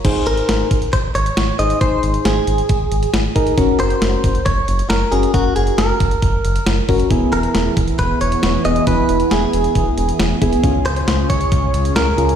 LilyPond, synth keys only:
\new Staff \with { instrumentName = "Synth keys" } { \time 4/4 \key aes \mixolydian \tempo 4 = 136 <ees' aes' c''>4. r2 <ees' aes' c''>8 | <ees' aes' c''>4. r2 <ees' aes' bes'>8 | <des' ges' bes'>4. r2 <des' ges' bes'>8 | <des' ges' bes'>4. r2 <des' ges' bes'>8 |
<b e' gis'>4. r2 <b e' gis'>8 | <b e' gis'>4. r2 <b e' gis'>8 | <des' f' aes'>4. r2 <des' f' aes'>8 | }